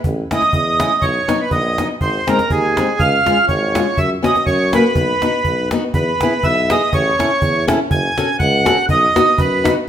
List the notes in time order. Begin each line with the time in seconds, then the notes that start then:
0.04 A1, cajon bass
0.31 A3 C#4 E4 D#5, cajon slap
0.42 cajon slap
0.53 E2, cajon bass
0.80 A3 C#4 E4, cajon slap
1.02 B1 C#5, cajon bass
1.28 F#3 B3 D#4, cajon slap
1.41 B4
1.51 A#1 D#5, cajon bass
1.78 F#3 B3 D#4, cajon slap
2.01 G#1 C5, cajon bass
2.27 G#3 C4 D#4 A#4, cajon slap
2.39 cajon slap
2.50 D#2 G#4, cajon bass, cajon slap
2.77 G#3 C4 D#4, cajon slap
3.00 C#2 F5, cajon bass
3.26 G#3 C#4 F4, cajon slap
3.37 cajon slap
3.48 G#1 C#5, cajon bass
3.75 G#3 C#4 F4, cajon slap
3.97 F#2 E5, cajon bass
4.23 B3 C#4 F#4 D#5, cajon slap
4.35 cajon slap
4.46 F#2 C#5, cajon bass
4.73 A#3 C#4 F#4 B4, cajon slap
4.95 B1, cajon bass
5.22 B3 D#4 F#4, cajon slap
5.44 B1, cajon bass
5.71 B3 D#4 F#4, cajon slap
5.94 E2 B4, cajon bass
6.21 B3 E4 G#4, cajon slap
6.43 B1 E5, cajon bass
6.70 B3 E4 G#4 D#5, cajon slap
6.93 A1 C#5, cajon bass
7.19 C#4 E4 A4, cajon slap
7.42 E2, cajon bass
7.68 C#4 E4 A4, cajon slap
7.91 F#1 G#5, cajon bass
8.18 C#4 F#4 A4, cajon slap
8.39 C#2 F#5, cajon bass
8.65 C#4 F#4 A4, cajon slap
8.89 B1 D#5, cajon bass
9.16 B3 D#4 F#4, cajon slap
9.38 F#2 B4, cajon bass
9.64 B3 D#4 F#4, cajon slap